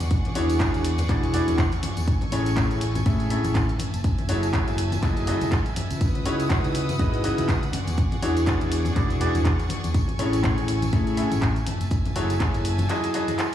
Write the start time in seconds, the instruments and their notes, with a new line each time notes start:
Already playing: violin section G#4 D5 F#5 C#6
0.00 fingered electric bass E2, closed hi-hat, tambourine
0.11 kick, closed hi-hat, tambourine
0.25 closed hi-hat, tambourine, high conga
0.35 fingered electric bass E2, grand piano E3 D4 E4 F#4 G#4 C#5, open hi-hat
0.50 closed hi-hat, tambourine
0.60 grand piano E3 D4 E4 F#4 G#4 C#5, kick, clap, closed hi-hat, tambourine, high conga
0.74 fingered electric bass E2, closed hi-hat, tambourine
0.85 open hi-hat
0.98 closed hi-hat, tambourine, high conga
1.09 fingered electric bass E1, grand piano E3 D4 E4 F#4 G#4 D5, kick, clap, closed hi-hat, tambourine
1.23 closed hi-hat, tambourine
1.34 grand piano E3 D4 E4 F#4 G#4 D5, open hi-hat
1.48 fingered electric bass E2, closed hi-hat, tambourine, high conga
1.58 kick, clap, closed hi-hat, tambourine
1.72 closed hi-hat, tambourine
1.83 open hi-hat, high conga
1.97 fingered electric bass E2, closed hi-hat, tambourine
2.07 violin section A4 G#5, kick, closed hi-hat, tambourine
2.21 closed hi-hat, tambourine, high conga
2.32 fingered electric bass A1, grand piano A2 C#4 E4 G#4 A4 C#5, open hi-hat
2.46 closed hi-hat, tambourine
2.56 grand piano A2 C#4 E4 G#4 A4 C#5, kick, clap, closed hi-hat, tambourine, high conga
2.71 fingered electric bass A1, closed hi-hat, tambourine
2.81 open hi-hat
2.95 closed hi-hat, tambourine, high conga
3.06 grand piano A2 C#4 E4 G#4 A4 E5, fingered electric bass A2, kick, closed hi-hat, tambourine
3.20 closed hi-hat, tambourine
3.30 grand piano A2 C#4 E4 G#4 A4 E5, open hi-hat
3.44 fingered electric bass A1, closed hi-hat, tambourine, high conga
3.55 kick, clap, closed hi-hat, tambourine
3.69 closed hi-hat, tambourine
3.79 violin section E5 G#5 A5, open hi-hat, high conga
3.94 fingered electric bass F#1, closed hi-hat, tambourine
4.04 kick, closed hi-hat, tambourine
4.18 closed hi-hat, tambourine, high conga
4.29 fingered electric bass F#1, grand piano F#3 E4 F#4 G#4 A4 C#5, open hi-hat
4.43 closed hi-hat, tambourine
4.53 grand piano F#3 E4 F#4 G#4 A4 C#5, kick, clap, closed hi-hat, tambourine, high conga
4.68 fingered electric bass F#1, closed hi-hat, tambourine
4.78 open hi-hat
4.92 closed hi-hat, tambourine, high conga
5.03 fingered electric bass F#1, grand piano F#3 E4 F#4 G#4 A4 D#5, kick, clap, closed hi-hat, tambourine
5.16 closed hi-hat, tambourine
5.27 grand piano F#3 E4 F#4 G#4 A4 D#5, open hi-hat
5.41 fingered electric bass C#2, closed hi-hat, tambourine, high conga
5.51 kick, clap, closed hi-hat, tambourine
5.66 closed hi-hat, tambourine
5.76 open hi-hat, high conga
5.91 fingered electric bass C#2, closed hi-hat, tambourine
6.01 violin section B4 F#5 D#6, kick, closed hi-hat, tambourine
6.15 closed hi-hat, tambourine, high conga
6.26 fingered electric bass C#2, grand piano C#3 D#4 E4 F#4 B4 C#5, open hi-hat
6.40 closed hi-hat, tambourine
6.50 grand piano C#3 D#4 E4 F#4 B4 C#5, kick, clap, closed hi-hat, tambourine, high conga
6.64 fingered electric bass C#2, closed hi-hat, tambourine
6.75 open hi-hat
6.89 closed hi-hat, tambourine, high conga
6.99 fingered electric bass G#1, grand piano C#3 D#4 E4 F#4 B4 D#5, kick, closed hi-hat, tambourine
7.14 closed hi-hat, tambourine
7.24 grand piano C#3 D#4 E4 F#4 B4 D#5, open hi-hat
7.38 fingered electric bass C#2, closed hi-hat, tambourine, high conga
7.48 kick, clap, closed hi-hat, tambourine
7.63 closed hi-hat, tambourine
7.73 violin section G#4 D5 C#6, open hi-hat, high conga
7.87 fingered electric bass E2, closed hi-hat, tambourine
7.97 kick, closed hi-hat, tambourine
8.12 closed hi-hat, tambourine, high conga
8.22 fingered electric bass E2, grand piano E3 D4 E4 F#4 G#4 C#5, open hi-hat
8.37 closed hi-hat, tambourine
8.46 grand piano E3 D4 E4 F#4 G#4 C#5, kick, clap, closed hi-hat, tambourine, high conga
8.61 fingered electric bass E2, closed hi-hat, tambourine
8.72 open hi-hat
8.85 closed hi-hat, tambourine, high conga
8.96 fingered electric bass E1, grand piano E3 D4 E4 F#4 G#4 D5, kick, clap, closed hi-hat, tambourine
9.10 closed hi-hat, tambourine
9.21 grand piano E3 D4 E4 F#4 G#4 D5, open hi-hat
9.35 fingered electric bass E2, closed hi-hat, tambourine, high conga
9.45 kick, clap, closed hi-hat, tambourine
9.60 closed hi-hat, tambourine
9.69 open hi-hat, high conga
9.84 fingered electric bass E2, closed hi-hat, tambourine
9.94 violin section A4 G#5, kick, closed hi-hat, tambourine
10.08 closed hi-hat, tambourine, high conga
10.19 fingered electric bass A1, grand piano A2 C#4 E4 G#4 A4 C#5, open hi-hat
10.33 closed hi-hat, tambourine
10.44 grand piano A2 C#4 E4 G#4 A4 C#5, kick, clap, closed hi-hat, tambourine, high conga
10.58 fingered electric bass A1, closed hi-hat, tambourine
10.68 open hi-hat
10.82 closed hi-hat, tambourine, high conga
10.93 grand piano A2 C#4 E4 G#4 A4 E5, fingered electric bass A2, kick, closed hi-hat, tambourine
11.07 closed hi-hat, tambourine
11.17 grand piano A2 C#4 E4 G#4 A4 E5, open hi-hat
11.31 fingered electric bass A1, closed hi-hat, tambourine, high conga
11.42 kick, clap, closed hi-hat, tambourine
11.56 closed hi-hat, tambourine
11.67 violin section E5 G#5 A5, open hi-hat, high conga
11.81 fingered electric bass F#1, closed hi-hat, tambourine
11.91 kick, closed hi-hat, tambourine
12.05 closed hi-hat, tambourine, high conga
12.16 fingered electric bass F#1, grand piano F#3 E4 F#4 G#4 A4 C#5, open hi-hat
12.30 closed hi-hat, tambourine
12.40 grand piano F#3 E4 F#4 G#4 A4 C#5, kick, clap, closed hi-hat, tambourine, high conga
12.54 fingered electric bass F#1, closed hi-hat, tambourine
12.65 open hi-hat
12.78 closed hi-hat, tambourine, high conga
12.89 grand piano F#3 E4 F#4 G#4 A4 D#5, clap, closed hi-hat, tambourine
13.04 closed hi-hat, tambourine
13.14 grand piano F#3 E4 F#4 G#4 A4 D#5, open hi-hat
13.28 closed hi-hat, tambourine, high conga
13.39 clap, closed hi-hat, tambourine